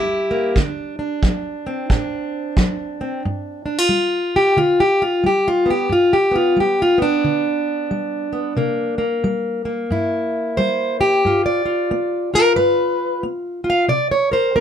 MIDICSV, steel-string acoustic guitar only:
0, 0, Header, 1, 2, 480
1, 0, Start_track
1, 0, Tempo, 666667
1, 407, Time_signature, 4, 2, 24, 8
1, 10515, End_track
2, 0, Start_track
2, 0, Title_t, "Steel-string acoustic guitar"
2, 0, Program_c, 0, 25
2, 0, Note_on_c, 0, 55, 59
2, 0, Note_on_c, 0, 64, 36
2, 0, Note_on_c, 0, 67, 88
2, 222, Note_on_c, 0, 58, 46
2, 367, Note_off_c, 0, 55, 0
2, 404, Note_on_c, 0, 50, 67
2, 405, Note_off_c, 0, 58, 0
2, 407, Note_off_c, 0, 64, 0
2, 411, Note_off_c, 0, 67, 0
2, 411, Note_on_c, 0, 62, 49
2, 704, Note_off_c, 0, 62, 0
2, 713, Note_on_c, 0, 62, 43
2, 850, Note_off_c, 0, 50, 0
2, 895, Note_on_c, 0, 54, 58
2, 1199, Note_on_c, 0, 60, 46
2, 1336, Note_off_c, 0, 54, 0
2, 1367, Note_on_c, 0, 45, 57
2, 1372, Note_off_c, 0, 62, 0
2, 1380, Note_on_c, 0, 62, 49
2, 1813, Note_off_c, 0, 45, 0
2, 1860, Note_on_c, 0, 54, 61
2, 2155, Note_off_c, 0, 60, 0
2, 2166, Note_on_c, 0, 60, 44
2, 2300, Note_off_c, 0, 54, 0
2, 2317, Note_off_c, 0, 60, 0
2, 2343, Note_on_c, 0, 43, 68
2, 2623, Note_off_c, 0, 62, 0
2, 2632, Note_on_c, 0, 62, 47
2, 2725, Note_off_c, 0, 62, 0
2, 2725, Note_on_c, 0, 65, 37
2, 2781, Note_off_c, 0, 43, 0
2, 2800, Note_on_c, 0, 55, 55
2, 3140, Note_on_c, 0, 67, 90
2, 3250, Note_off_c, 0, 55, 0
2, 3286, Note_off_c, 0, 65, 0
2, 3288, Note_on_c, 0, 50, 63
2, 3295, Note_on_c, 0, 65, 85
2, 3296, Note_off_c, 0, 67, 0
2, 3453, Note_off_c, 0, 65, 0
2, 3457, Note_on_c, 0, 67, 91
2, 3614, Note_on_c, 0, 65, 83
2, 3615, Note_off_c, 0, 67, 0
2, 3734, Note_off_c, 0, 50, 0
2, 3770, Note_on_c, 0, 55, 56
2, 3773, Note_off_c, 0, 65, 0
2, 3790, Note_on_c, 0, 67, 79
2, 3941, Note_off_c, 0, 67, 0
2, 3943, Note_on_c, 0, 65, 87
2, 4073, Note_on_c, 0, 59, 43
2, 4098, Note_off_c, 0, 65, 0
2, 4107, Note_on_c, 0, 67, 86
2, 4215, Note_off_c, 0, 55, 0
2, 4232, Note_off_c, 0, 59, 0
2, 4244, Note_on_c, 0, 43, 66
2, 4259, Note_off_c, 0, 67, 0
2, 4266, Note_on_c, 0, 65, 80
2, 4415, Note_on_c, 0, 67, 72
2, 4419, Note_off_c, 0, 65, 0
2, 4546, Note_on_c, 0, 59, 41
2, 4573, Note_off_c, 0, 67, 0
2, 4576, Note_on_c, 0, 65, 77
2, 4692, Note_off_c, 0, 43, 0
2, 4726, Note_on_c, 0, 55, 57
2, 4734, Note_off_c, 0, 65, 0
2, 4754, Note_on_c, 0, 67, 70
2, 4903, Note_off_c, 0, 67, 0
2, 4910, Note_on_c, 0, 65, 90
2, 5016, Note_off_c, 0, 59, 0
2, 5025, Note_on_c, 0, 59, 44
2, 5052, Note_off_c, 0, 65, 0
2, 5054, Note_on_c, 0, 62, 91
2, 5173, Note_off_c, 0, 55, 0
2, 5215, Note_on_c, 0, 50, 65
2, 5657, Note_off_c, 0, 50, 0
2, 5694, Note_on_c, 0, 55, 57
2, 5986, Note_off_c, 0, 59, 0
2, 5995, Note_on_c, 0, 59, 45
2, 6137, Note_off_c, 0, 55, 0
2, 6152, Note_off_c, 0, 59, 0
2, 6168, Note_on_c, 0, 48, 71
2, 6172, Note_on_c, 0, 58, 49
2, 6458, Note_off_c, 0, 58, 0
2, 6467, Note_on_c, 0, 58, 45
2, 6492, Note_off_c, 0, 62, 0
2, 6613, Note_off_c, 0, 48, 0
2, 6652, Note_on_c, 0, 55, 64
2, 6941, Note_off_c, 0, 58, 0
2, 6950, Note_on_c, 0, 58, 49
2, 7095, Note_off_c, 0, 55, 0
2, 7132, Note_on_c, 0, 43, 64
2, 7141, Note_on_c, 0, 64, 53
2, 7575, Note_off_c, 0, 43, 0
2, 7612, Note_on_c, 0, 72, 93
2, 7621, Note_on_c, 0, 55, 58
2, 7921, Note_off_c, 0, 72, 0
2, 7924, Note_on_c, 0, 67, 88
2, 8059, Note_off_c, 0, 55, 0
2, 8073, Note_off_c, 0, 64, 0
2, 8089, Note_off_c, 0, 58, 0
2, 8099, Note_on_c, 0, 43, 67
2, 8111, Note_on_c, 0, 65, 48
2, 8246, Note_off_c, 0, 67, 0
2, 8249, Note_on_c, 0, 74, 71
2, 8383, Note_off_c, 0, 65, 0
2, 8391, Note_on_c, 0, 65, 44
2, 8537, Note_off_c, 0, 43, 0
2, 8575, Note_on_c, 0, 59, 60
2, 8869, Note_off_c, 0, 65, 0
2, 8882, Note_on_c, 0, 65, 45
2, 8888, Note_off_c, 0, 74, 0
2, 8892, Note_on_c, 0, 70, 87
2, 9015, Note_off_c, 0, 59, 0
2, 9042, Note_off_c, 0, 70, 0
2, 9045, Note_on_c, 0, 71, 99
2, 9049, Note_on_c, 0, 43, 62
2, 9491, Note_off_c, 0, 43, 0
2, 9525, Note_off_c, 0, 71, 0
2, 9527, Note_on_c, 0, 59, 54
2, 9813, Note_off_c, 0, 65, 0
2, 9822, Note_on_c, 0, 65, 48
2, 9862, Note_on_c, 0, 77, 88
2, 9970, Note_off_c, 0, 59, 0
2, 9983, Note_off_c, 0, 65, 0
2, 9997, Note_on_c, 0, 48, 70
2, 9999, Note_off_c, 0, 77, 0
2, 10002, Note_on_c, 0, 74, 78
2, 10159, Note_off_c, 0, 74, 0
2, 10162, Note_on_c, 0, 73, 70
2, 10307, Note_on_c, 0, 70, 42
2, 10314, Note_off_c, 0, 73, 0
2, 10317, Note_on_c, 0, 72, 79
2, 10445, Note_off_c, 0, 48, 0
2, 10479, Note_off_c, 0, 70, 0
2, 10481, Note_off_c, 0, 72, 0
2, 10481, Note_on_c, 0, 60, 59
2, 10481, Note_on_c, 0, 70, 78
2, 10515, Note_off_c, 0, 60, 0
2, 10515, Note_off_c, 0, 70, 0
2, 10515, End_track
0, 0, End_of_file